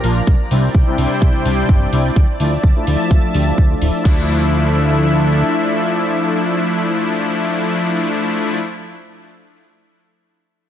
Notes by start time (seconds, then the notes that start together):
Already playing: F3 A#4 D5 A#5
0.04 A#1 F3 A#3 D4 F4, open hi-hat
0.27 C2 E4 C5 D5 G5, kick
0.51 C2 C3 G3 C4 D4 E4, open hi-hat
0.75 C2, kick
0.87 C3 G3 C4 D4 E4
0.98 C2 C3 G3 C4 D4 E4, open hi-hat
1.22 C2, kick
1.45 C2 C3 G3 C4 D4 G4, open hi-hat
1.69 G1, kick
1.93 C2 G3 C4 D4 E4, open hi-hat
2.16 D2 F3 E5 A5, kick
2.40 D2 F3 A3 D4 E4, open hi-hat
2.64 D2, kick
2.76 F3 A3 D4 E4
2.87 D2 F3 A3 D4 E4, open hi-hat
3.11 D2, kick
3.34 D2 F3 A3 D4 G4, open hi-hat
3.47 F3 A3 D4 E4
3.58 D2, kick
3.70 F3 A3 D4 F4
3.82 D1 F3 A3 D4 E4, open hi-hat
4.05 D2 F3 A3 D4 E4 A4 E5, kick, crash